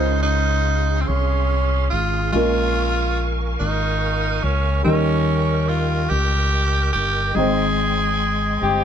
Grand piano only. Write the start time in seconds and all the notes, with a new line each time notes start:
Already playing: C#3 G#3 C#4 F4 C5
2.32 A#2 G#3 A#3 C#4 F4 A#4
4.83 D#3 G3 A#3 C#4 D#4
4.87 A#4
7.35 G#2 G#3 C4 D#4 C5 G5